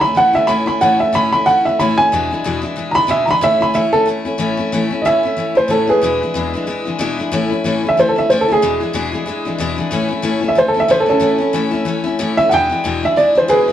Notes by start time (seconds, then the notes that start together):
0.01 A3 C#4 E4 B5
0.15 E3 A3 C#4 E4 F#5
0.33 A3 C#4 E4 E5
0.47 A2 E3 A3 C#4 E4 B5
0.66 A3 C#4 E4 B5
0.81 A2 E3 A3 C#4 E4 F#5
0.99 A3 C#4 E4 E5
1.13 A2 E3 A3 C#4 E4 B5
1.32 A3 C#4 E4 B5
1.46 E3 A3 C#4 E4 F#5
1.65 A3 C#4 E4 E5
1.79 A2 E3 A3 C#4 E4 B5
1.98 C#4 E4 G#5
2.02 A3
2.12 E2 B2 E3 G#3 D4 E4
2.31 E3 G#3 D4 E4
2.44 E2 B2 E3 G#3 D4 E4
2.62 E3 G#3 D4 E4
2.76 E3 G#3 D4 E4
2.91 E4 A#5 B5
2.96 E3 G#3 D4
3.07 E2 B2 E3 G#3 D4 E4 E5
3.25 G#3 D4 E4 A#5
3.30 E3 B5
3.41 A2 E3 A3 C#4 E4 E5
3.60 A3 C#4 E4 B5
3.74 A2 E3 A3 C#4 E4 E5
3.92 A3 C#4 E4 A4
4.06 E3 A3 C#4 E4
4.25 A3 C#4 E4
4.38 A2 E3 A3 C#4 E4
4.57 A3 C#4 E4
4.72 A2 E3 A3 C#4 E4
4.91 A3 C#4 E4
5.02 A2 E3 D#5 E5
5.06 A3 C#4 E4
5.23 A3 C#4 E4
5.37 E3 A3 C#4 E4
5.55 A3 C#4 E4 C5
5.68 A2 E3 A3 C#4 E4 A4
5.87 C#4 E4 G#4 B4
5.92 A3
6.02 E2 B2 E3 G#3 D4 E4
6.22 E3 G#3 D4 E4
6.34 E2 B2 E3 G#3 D4 E4
6.54 E3 G#3 D4 E4
6.67 E3 G#3 D4 E4
6.85 E3 G#3 D4 E4
6.99 E2 B2 E3 G#3 D4 E4
7.19 E3 G#3 D4 E4
7.32 A2 E3 A3 C#4 E4
7.51 A3 C#4 E4
7.64 A2 E3 A3 C#4 E4
7.83 A3 C#4 E4
7.89 E5
7.97 E3 A3 C#4 E4 C5
8.09 A4
8.16 A3 C#4 E4 E5
8.30 A2 E3 A3 C#4 E4 C5
8.41 A4
8.48 A3 C#4 E4
8.52 G#4
8.62 E2 B2 E3 G#3 D4 E4
8.80 E3 G#3 D4 E4
8.93 E2 B2 E3 G#3 D4 E4
9.12 E3 G#3 D4 E4
9.26 E3 G#3 D4 E4
9.45 E3 G#3 D4 E4
9.58 E2 B2 E3 G#3 D4 E4
9.76 E3 G#3 D4 E4
9.91 A2 E3 A3 C#4 E4
10.09 A3 C#4 E4
10.22 A2 E3 A3 C#4 E4
10.41 A3 C#4 E4
10.48 E5
10.55 E3 A3 C#4 E4 C5
10.68 A4
10.74 A3 C#4 E4
10.80 E5
10.88 A2 E3 A3 C#4 E4 C5
11.00 A4
11.06 A3 C#4 E4
11.10 A4
11.20 A2 E3 A3 C#4 E4
11.38 A3 C#4 E4
11.53 A2 E3 A3 C#4 E4
11.71 A3 C#4 E4
11.85 E3 A3 C#4 E4
12.04 C#4 E4
12.08 A3
12.19 A2 E3 A3 C#4 E4
12.37 A3 C#4 E4 E5
12.49 E2 B2 E3 G#3 D4 E4 F#5
12.54 G5
12.70 E3 G#3 D4 E4
12.84 E2 B2 E3 G#3 D4 E4
13.03 E3 G#3 D4 E4 E5
13.16 E3 G#3 D4 E4 D5
13.35 E3 G#3 D4 E4 C5
13.48 E2 B2 E3 G#3 D4 E4 G#4 B4
13.68 D4 E4